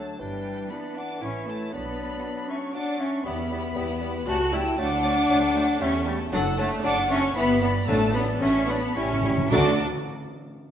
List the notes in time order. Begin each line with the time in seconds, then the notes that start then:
Already playing: F#3 A3 D4 C#5 A5
0.19 G1 E3 G3 D4 B4 G5
0.71 E3 B3 D4 E4 B4 D5 B5
0.96 D4 F#5 D6
1.21 A1 E3 C#4 E4 A4 E5 C#6
1.47 A3 C#5 A5
1.72 B1 F#3 B3 D4 D5 B5
2.23 D4 F#4
2.49 C#4 E5 C#6
2.74 F#3 D4 F#4 F#5 D6
3.00 C#4 E5 C#6
3.25 E2 G3 B3 E4 G4 E5 B5
3.38 B3 E4
3.51 G3 B3 E4 G4
3.63 B3 E4
3.76 E2 G3 B3 E4 G4
3.89 B3 E4
4.01 G3 B3 E4 G4
4.14 B3 E4
4.27 C#2 G3 A3 C#4 F#4 G4 A5 F#6
4.40 A3 A4
4.53 G3 A3 C#4 E4 G4 G5 E6
4.66 A3 A4
4.78 D2 F#3 A3 D4 F#4 F#5 D6
4.91 A3 A4
5.03 F#3 A3 D4 F#4
5.16 A3 A4
5.29 D2 F#3 A3 D4 F#4
5.42 A3 A4
5.55 F#3 A3 D4 F#4
5.68 A3 A4
5.80 E2 G3 A3 C#4 G4 E5 C#6
5.93 A3 A4
6.06 G3 A3 C#4 G4
6.18 A3 A4
6.32 F#1 F#3 A3 D4 F#4 A4 F#5
6.45 D4 A4
6.57 F#3 A3 D4 F#4 C#5 A5
6.71 D4 A4
6.83 F#1 F#3 A3 D4 F#4 F#5 D6
6.96 D4 A4
7.10 F#3 A3 C#4 D4 F#4 E5 C#6
7.23 D4 A4
7.36 G1 E3 B3 E4 E5 B5
7.48 B3 G4
7.61 E3 B3 E4 D5 B5
7.75 B3 G4
7.88 A1 A2 F#3 A3 D4 F#4 D5 A5
8.01 D4 A4
8.14 F#3 A3 B3 D4 F#4 D5 B5
8.28 D4 A4
8.41 A1 F#3 A3 C#4 D4 F#4 E5 C#6
8.55 D4 A4
8.68 F#3 A3 B3 D4 F#4 D5 B5
8.83 D4 A4
8.96 A1 A2 G3 C#4 E4 G4 E5 C#6
9.05 A2
9.10 A2 E4 A4
9.21 A2 G3 C#4 E4 G4
9.29 A2
9.37 A2 E4 A4
9.51 D2 D3 A3 D4 F#4 A4 D5 D6